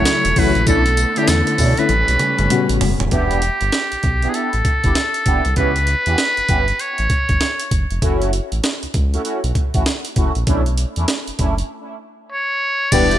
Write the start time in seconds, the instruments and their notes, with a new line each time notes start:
Already playing: fm electric piano C#3 F#3 A3 E4, string section F#3 E4 A4, muted trumpet C#5
0.05 snare, closed hi-hat, tambourine
0.25 analog synth bass E1, closed hi-hat
0.36 analog synth bass A1, fm electric piano C#3 F#3 A3 E4, analog polysynth A3 C#4 E4 F#4, muted trumpet B4, kick, open hi-hat
0.55 analog synth bass A#1, closed hi-hat
0.67 analog synth bass B1, string section D3 A3 B3, analog polysynth A3 C#4 D4 E4, muted trumpet A4, kick, closed hi-hat, tambourine
0.86 closed hi-hat
0.97 closed hi-hat, tambourine
1.16 fm electric piano D3 A3 C#4 E4, analog polysynth A3 C#4 D4 E4, muted trumpet G4, closed hi-hat
1.27 analog synth bass E2, muted trumpet A4, snare, closed hi-hat, tambourine
1.47 closed hi-hat
1.58 analog synth bass B2, analog polysynth A3 C#4 D4 E4, kick, open hi-hat, tambourine
1.77 fm electric piano D3 A3 C#4 E4, muted trumpet B4, closed hi-hat
1.89 analog synth bass A1, string section G3 C#4, closed hi-hat, high tom
2.08 analog synth bass B1, closed hi-hat
2.19 closed hi-hat, mid tom
2.38 analog synth bass G1, closed hi-hat, mid tom
2.50 fm electric piano C#3 G3 B3 F#4, closed hi-hat, mid tom
2.69 analog synth bass A1, closed hi-hat
2.81 analog synth bass E1, floor tom, open hi-hat
3.00 analog synth bass D#1, closed hi-hat, floor tom
3.11 analog synth bass E1, analog polysynth B3 D4 E4 G4, muted trumpet G4, kick, closed hi-hat
3.31 closed hi-hat
3.42 closed hi-hat
3.61 analog synth bass G1, closed hi-hat
3.72 snare, closed hi-hat
3.92 analog synth bass B1, closed hi-hat
4.03 analog synth bass B1, kick, closed hi-hat
4.22 analog polysynth B3 D4 E4 G4, closed hi-hat
4.29 muted trumpet G#4
4.34 analog polysynth B3 D4 E4 G4, muted trumpet A4, closed hi-hat
4.53 analog synth bass A1, closed hi-hat
4.65 kick, closed hi-hat
4.84 analog synth bass G1, analog polysynth B3 D4 E4 G4, kick, closed hi-hat
4.95 snare, closed hi-hat
5.14 closed hi-hat
5.26 analog synth bass F#1, analog polysynth B3 D4 E4 G4, kick, closed hi-hat
5.45 analog synth bass C2, closed hi-hat
5.56 analog synth bass C#2, analog polysynth B3 C#4 E4 G4, muted trumpet B4, kick, closed hi-hat
5.76 closed hi-hat
5.87 closed hi-hat
6.06 analog synth bass E2, analog polysynth B3 C#4 E4 G4, closed hi-hat
6.18 snare, closed hi-hat
6.37 analog synth bass G1, closed hi-hat
6.49 analog synth bass G1, analog polysynth B3 C#4 E4 G4, kick, closed hi-hat
6.68 closed hi-hat
6.79 muted trumpet C#5, closed hi-hat
6.98 analog synth bass A1, closed hi-hat
7.10 kick, closed hi-hat
7.29 analog synth bass G1, kick, closed hi-hat
7.41 snare, closed hi-hat
7.60 closed hi-hat
7.71 analog synth bass F#1, kick, closed hi-hat
7.91 analog synth bass F1, closed hi-hat
8.02 analog synth bass F#1, analog polysynth A3 C#4 E4 F#4, kick, closed hi-hat
8.22 closed hi-hat
8.33 closed hi-hat
8.52 analog synth bass A1, closed hi-hat
8.64 snare, closed hi-hat
8.83 analog synth bass C#2, closed hi-hat
8.94 analog synth bass C#2, kick, closed hi-hat
9.13 analog polysynth A3 C#4 E4 F#4, closed hi-hat
9.25 analog polysynth A3 C#4 E4 F#4, closed hi-hat
9.44 analog synth bass B1, closed hi-hat
9.55 kick, closed hi-hat
9.74 analog synth bass A1, analog polysynth A3 C#4 E4 F#4, kick, closed hi-hat
9.86 snare, closed hi-hat
10.05 closed hi-hat
10.16 analog synth bass F#1, analog polysynth A3 C#4 E4 F#4, kick, closed hi-hat
10.35 analog synth bass A#1, closed hi-hat
10.47 analog synth bass B1, analog polysynth A3 C#4 D4 E4, kick, closed hi-hat
10.66 closed hi-hat
10.78 closed hi-hat
10.96 analog synth bass E2, analog polysynth A3 C#4 D4 E4, closed hi-hat
11.08 snare, closed hi-hat
11.27 analog synth bass F#1, closed hi-hat
11.39 analog synth bass F#1, analog polysynth A3 C#4 D4 E4, kick, closed hi-hat
11.58 closed hi-hat
12.32 muted trumpet C#5
12.92 analog synth bass E1, fm electric piano G3 B3 D4 E4 B4, analog polysynth B3 D4 E4 G4, muted trumpet D5, kick, closed hi-hat, crash, tambourine
13.11 closed hi-hat